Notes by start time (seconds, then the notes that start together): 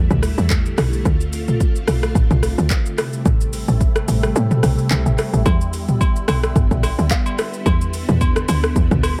Already playing: D3 G3 A3 E4
0.11 D2, kick, mid tom, shaker
0.23 cross-stick, open hi-hat, shaker
0.38 E2, shaker
0.50 kick, clap, shaker
0.66 shaker
0.78 B1, cross-stick, open hi-hat, shaker
0.93 shaker
1.05 D2 C4 F4, kick, shaker
1.21 shaker
1.33 open hi-hat, shaker
1.48 C2, mid tom, shaker
1.61 kick, shaker
1.76 shaker
1.88 B1, cross-stick, open hi-hat, shaker
2.03 cross-stick, shaker
2.15 A1, kick, shaker
2.31 C2, kick, mid tom, shaker
2.43 cross-stick, open hi-hat, shaker
2.58 D2, shaker
2.70 kick, clap, shaker
2.86 shaker
2.98 C3 G3 A3 E4, cross-stick, open hi-hat, shaker
3.13 shaker
3.26 A1, kick, shaker
3.41 shaker
3.53 open hi-hat, shaker
3.68 A1, shaker
3.81 kick, shaker
3.96 cross-stick, shaker
4.08 A1, open hi-hat, shaker
4.23 cross-stick, shaker
4.36 A2, shaker
4.51 mid tom, shaker
4.63 B1, cross-stick, open hi-hat, shaker
4.78 shaker
4.91 C2, clap, shaker
5.06 A1, shaker
5.18 cross-stick, open hi-hat, shaker
5.33 A1, shaker
5.46 E2 D3 B3, kick, high agogo, shaker
5.61 shaker
5.73 open hi-hat, shaker
5.88 D2, mid tom, shaker
6.01 kick, high agogo, shaker
6.16 shaker
6.28 B1, cross-stick, open hi-hat, high agogo, shaker
6.43 cross-stick, shaker
6.56 G1, kick, shaker
6.71 B1, kick, mid tom, shaker
6.83 cross-stick, open hi-hat, high agogo, shaker
6.99 D2, shaker
7.11 kick, clap, low woodblock, shaker
7.26 high agogo, shaker
7.39 cross-stick, open hi-hat, shaker
7.54 shaker
7.66 E2, kick, high agogo, shaker
7.81 shaker
7.93 open hi-hat, shaker
8.09 E2, mid tom, shaker
8.21 kick, high agogo, shaker
8.36 cross-stick, shaker
8.48 D2, open hi-hat, high agogo, shaker
8.64 cross-stick, shaker
8.76 E2, kick, shaker
8.91 D2, kick, mid tom, shaker
9.03 cross-stick, open hi-hat, high agogo, shaker